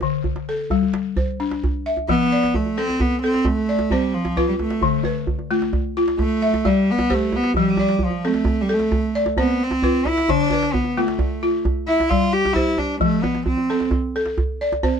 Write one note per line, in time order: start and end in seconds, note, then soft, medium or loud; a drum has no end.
0.00 0.48 D3 medium
0.00 0.48 B4 medium
0.00 djembe slap soft
0.00 djembe tone medium
0.24 djembe bass medium
0.36 djembe slap soft
0.36 djembe tone soft
0.49 0.94 A4 medium
0.70 1.17 G3 medium
0.70 djembe bass medium
0.82 djembe tone soft
0.93 djembe slap medium
1.17 1.85 C5 medium
1.17 djembe slap soft
1.17 djembe tone medium
1.17 djembe bass medium
1.40 1.86 D4 medium
1.40 djembe slap soft
1.51 djembe slap medium
1.64 djembe tone medium
1.64 djembe bass medium
1.86 2.32 E5 medium
1.97 djembe tone medium
2.09 2.55 F3 medium
2.09 2.57 B3 loud
2.09 djembe bass medium
2.32 3.00 D5 medium
2.43 djembe slap medium
2.54 2.79 A3 medium
2.54 djembe bass medium
2.66 djembe tone medium
2.78 3.02 C4 loud
2.78 3.23 C4 medium
2.78 3.23 A4 medium
2.89 djembe slap soft
3.00 3.22 B3 medium
3.00 djembe tone medium
3.00 djembe bass medium
3.22 3.46 C4 loud
3.22 3.69 A4 medium
3.34 djembe slap medium
3.45 3.92 A3 loud
3.45 djembe tone medium
3.45 djembe bass medium
3.69 4.37 D5 medium
3.79 djembe slap medium
3.79 djembe tone medium
3.90 4.15 G3 medium
3.90 4.37 C4 medium
3.90 4.60 C5 medium
3.90 djembe bass medium
4.14 4.47 F3 medium
4.25 djembe slap medium
4.25 djembe tone medium
4.37 4.83 F4 medium
4.37 5.04 B4 medium
4.37 djembe slap soft
4.37 djembe bass medium
4.48 4.53 G3 medium
4.59 5.02 A3 medium
4.59 djembe tone medium
4.70 djembe slap medium
4.81 5.28 D3 medium
4.81 djembe bass medium
5.04 5.73 B4 medium
5.04 djembe slap soft
5.04 djembe tone medium
5.27 djembe bass medium
5.39 djembe tone medium
5.51 5.96 A3 medium
5.51 5.96 F4 medium
5.62 djembe slap medium
5.73 djembe tone medium
5.73 djembe bass medium
5.97 6.19 F4 medium
6.08 djembe slap medium
6.19 6.68 A3 loud
6.19 djembe tone medium
6.19 djembe bass medium
6.42 7.10 E5 medium
6.54 djembe slap medium
6.54 djembe tone medium
6.65 7.10 G3 medium
6.65 6.92 G3 medium
6.65 7.33 D5 medium
6.65 djembe bass medium
6.90 7.15 B3 loud
6.99 djembe slap medium
6.99 djembe tone medium
7.10 7.37 A3 medium
7.10 7.56 G4 medium
7.10 7.78 C5 medium
7.10 djembe slap soft
7.10 djembe bass medium
7.32 7.57 B3 loud
7.32 djembe tone medium
7.43 djembe slap medium
7.54 8.02 F3 medium
7.54 8.05 G3 loud
7.54 djembe bass medium
7.77 8.47 D5 medium
7.77 djembe slap soft
7.77 djembe tone medium
7.89 djembe slap medium
7.99 djembe bass medium
8.04 8.29 F3 medium
8.10 djembe tone medium
8.25 8.63 A3 medium
8.25 8.70 C4 medium
8.25 8.68 A4 medium
8.34 djembe slap medium
8.45 djembe tone medium
8.45 djembe bass medium
8.61 8.75 G3 medium
8.69 9.15 A4 medium
8.74 9.17 A3 medium
8.79 djembe slap medium
8.92 djembe tone medium
8.92 djembe bass medium
9.15 9.83 D5 medium
9.26 djembe slap medium
9.26 djembe tone medium
9.37 9.65 B3 medium
9.37 9.83 C4 medium
9.37 10.06 C5 medium
9.37 djembe bass medium
9.63 10.09 C4 medium
9.71 djembe slap medium
9.71 djembe tone medium
9.82 10.29 F4 medium
9.82 10.51 B4 medium
9.82 djembe slap soft
9.82 djembe bass medium
10.05 10.32 E4 medium
10.05 djembe tone medium
10.17 djembe slap medium
10.29 10.74 D3 medium
10.29 10.75 D4 loud
10.29 djembe bass medium
10.50 11.20 B4 medium
10.50 djembe tone medium
10.62 djembe slap medium
10.73 10.99 B3 medium
10.73 djembe bass medium
10.84 djembe tone medium
10.97 11.42 A3 medium
10.97 11.65 A3 medium
10.97 11.42 F4 medium
11.08 djembe slap medium
11.19 djembe tone medium
11.19 djembe bass medium
11.43 11.65 F4 medium
11.65 djembe slap soft
11.65 djembe tone medium
11.65 djembe bass medium
11.88 12.11 E4 medium
11.88 12.56 E5 medium
12.00 djembe slap medium
12.00 djembe tone medium
12.09 12.56 G3 medium
12.09 12.34 F4 medium
12.09 12.78 D5 medium
12.09 djembe slap soft
12.09 djembe bass medium
12.33 12.55 G4 medium
12.45 djembe slap medium
12.45 djembe tone medium
12.53 12.79 E4 medium
12.53 13.01 G4 medium
12.53 13.24 C5 medium
12.53 djembe bass medium
12.78 13.01 D4 medium
12.78 djembe tone medium
13.00 13.46 F3 medium
13.00 13.24 A3 medium
13.00 djembe bass medium
13.22 13.46 B3 medium
13.22 djembe slap soft
13.22 djembe tone medium
13.35 djembe slap medium
13.46 13.88 C4 medium
13.46 djembe bass medium
13.57 djembe tone medium
13.70 14.15 C4 medium
13.70 14.15 A4 medium
13.80 djembe slap medium
13.91 djembe tone medium
13.91 djembe bass medium
14.16 14.61 A4 medium
14.25 djembe slap medium
14.38 djembe tone medium
14.38 djembe bass medium
14.61 15.00 D5 medium
14.72 djembe slap medium
14.72 djembe tone medium
14.83 15.00 C4 medium
14.83 15.00 C5 medium
14.83 djembe bass medium